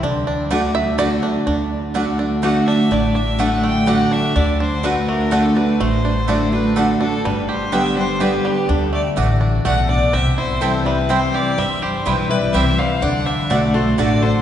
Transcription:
<<
  \new Staff \with { instrumentName = "Fiddle" } { \time 3/4 \key d \mixolydian \tempo 4 = 125 r2. | r2 fis''8 e''8 | d''8 e''8 fis''8 g''8 fis''8 e''8 | d''8 c''8 b'8 bes'8 a'8 b'8 |
c''4. b'8 a'8 a'8 | b'8 c''8 e''8 c''8 b'8 g'8 | a'8 d''8 r4 fis''8 d''8 | e''8 c''8 a'8 b'8 c''8 d''8 |
e''8 c''8 b'8 d''8 e''8 f''8 | fis''8 e''8 d''8 c''8 d''8 c''8 | }
  \new Staff \with { instrumentName = "Resonator guitar played with a steel bar" } { \time 3/4 \key d \mixolydian r2. | r2. | r2. | r2. |
r2. | r2. | r2. | r2. |
r4 g'8 b'8 c''8 c''8 | d''8 c''8 a'8 a'8 a'8 a'8 | }
  \new Staff \with { instrumentName = "Mandolin" } { \time 3/4 \key d \mixolydian r4 <a fis' d'' fis''>8 r8 <a fis' d'' fis''>8 r8 | r4 <a fis' d'' fis''>8 r8 <a fis' d'' fis''>8 r8 | r4 <a fis' d'' fis''>8 r8 <a fis' d'' fis''>8 r8 | r4 <a fis' d'' fis''>8 r8 <a fis' d'' fis''>8 r8 |
r4 <a fis' d'' fis''>8 r8 <a fis' d'' fis''>8 r8 | r4 <b g' d'' g''>8 r8 <b g' d'' g''>8 r8 | r4 <a fis' d'' fis''>8 r8 <a fis' d'' fis''>8 r8 | r4 <c' e' c'' g''>8 r8 <c' e' c'' g''>8 r8 |
r4 <c' e' c'' g''>8 r8 <c' e' c'' g''>8 r8 | r4 <a fis' d'' fis''>8 r8 <a fis' d'' fis''>8 r8 | }
  \new Staff \with { instrumentName = "Five-string banjo" } { \time 3/4 \key d \mixolydian << { r4. e''8 d''4 | r2. | r2. | r2. |
r2. | r2. | r2. | r2. |
r2. | r2. | } \\ { d'8 d'8 d'4. d'8 | d'4 d'8 d'8 a8 d'8 | d'8 d'8 d'8 a8 d'8 d'8 | d'8 d'8 d'8 a8 d'8 d'8 |
a8 d'8 d'8 d'8 d'8 d'8 | g8 g'8 g8 d'8 g'8 g8 | d'8 a8 d'8 d'8 a8 d'8 | c'8 e'8 c'8 g8 c'8 g'8 |
g8 g'8 g8 e'8 g'8 g8 | d'8 d'8 d'8 a8 d'8 d'8 | } >> }
  \new Staff \with { instrumentName = "Steel-string acoustic guitar" } { \time 3/4 \key d \mixolydian << { r4 <d a d' fis'>8 <d' fis'>8 <d a d' fis'>8 <d' fis'>8 | r4 <d a d' fis'>4 <d a d' fis'>4 | r4 <d a d' fis'>4 <d a d' fis'>4 | r4 <d a d' fis'>4 <d a d' fis'>8 <d' fis'>8 |
r4 <d a d' fis'>8 <d' fis'>8 <d a d' fis'>8 <d' fis'>8 | r4 <d g b g'>8 <b g'>8 <d g b g'>4 | r2. | r4 <e g c' e'>8 <c' e'>8 <e g c' e'>4 |
r4 <e g c' e'>8 <c' e'>8 <e g c' e'>8 <c' e'>8 | r4 <d a d' fis'>8 <d' fis'>8 <d a d' fis'>8 <d' fis'>8 | } \\ { d2 r4 | d2 r4 | a,2 r4 | d2 r4 |
a,2 r4 | g,2 r4 | d4 e4 b,4 | c2 r4 |
g,2 r4 | d2 r4 | } >> }
  \new Staff \with { instrumentName = "Upright bass" } { \clef bass \time 3/4 \key d \mixolydian d,2. | d,2. | a,,2. | d,2. |
a,,2. | g,,2. | d,4 a,,4 b,,4 | c,2. |
g,,4 b,,4 c,4 | d,4 b,,4 a,,4 | }
>>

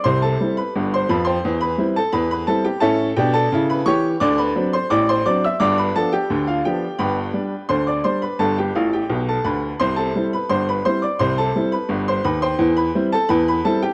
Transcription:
<<
  \new Staff \with { instrumentName = "Upright piano" } { \time 2/4 \key c \major \tempo 4 = 86 <c'' c'''>16 <a' a''>8 <b' b''>8 <c'' c'''>16 <b' b''>16 <c'' g'' c'''>16~ | <c'' g'' c'''>16 <b' b''>8 <a' a''>16 <b' b''>16 <b' b''>16 <a' a''>16 <g' g''>16 | <a' e'' a''>8 <g' g''>16 <a' a''>8 <b' b''>16 <cis'' cis'''>8 | <d'' d'''>16 <b' b''>8 <c'' c'''>16 <d'' d'''>16 <c'' c'''>16 <d'' d'''>16 <e'' e'''>16 |
<d'' d'''>16 <b' b''>16 <a' a''>16 <g' g''>8 <f' f''>16 <g' g''>8 | <b' g'' b''>4 <c'' c'''>16 <d'' d'''>16 <c'' c'''>16 <b' b''>16 | <a' a''>16 <g' g''>16 <f' f''>16 <g' g''>8 <a' a''>16 <b' b''>8 | <c'' c'''>16 <a' a''>8 <b' b''>16 <c'' c'''>16 <b' b''>16 <c'' c'''>16 <d'' d'''>16 |
<c'' c'''>16 <a' a''>8 <b' b''>8 <c'' c'''>16 <b' b''>16 <c'' g'' c'''>16~ | <c'' g'' c'''>16 <b' b''>8 <a' a''>16 <b' b''>16 <b' b''>16 <a' a''>16 <g' g''>16 | }
  \new Staff \with { instrumentName = "Upright piano" } { \clef bass \time 2/4 \key c \major <c, c>8 <g c' e'>8 <g,, g,>8 <f, f>8 | <e, e>8 <g c' e'>8 <e, e>8 <g c' e'>8 | <a, cis'>8 <b, d'>8 <cis e'>8 <e g'>8 | <d, d>8 <fis c' d'>8 <a,, a,>8 <fis c' d'>8 |
<g,, g,>8 <f b d'>8 <d, d>8 <f b d'>8 | <g,, g,>8 <g d'>8 <d, d>8 <g d'>8 | <g,, g,>8 <a,, a,>8 <b,, b,>8 <d, d>8 | <c, c>8 <g c' e'>8 <g,, g,>8 <g c' e'>8 |
<c, c>8 <g c' e'>8 <g,, g,>8 <ees, ees>8 | <e, e>8 <g c' e'>8 <e, e>8 <g c' e'>8 | }
>>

